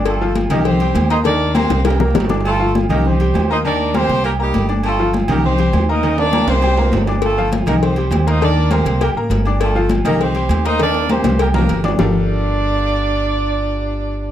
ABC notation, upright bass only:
X:1
M:4/4
L:1/8
Q:1/4=201
K:Gm
V:1 name="Upright bass" clef=bass
G,,,3 C,,3 E,,2- | E,,3 C,,3 G,,,2- | G,,,3 C,,3 E,,2- | E,,3 C,,3 G,,,2- |
G,,,3 C,,3 E,,2- | E,,3 C,,3 G,,,2- | G,,,3 C,,3 E,,2- | E,,3 C,,2 A,,, G,,,2- |
G,,,3 C,,3 E,,2- | E,,3 C,,3 G,,,2 | G,,,8- | G,,,8 |]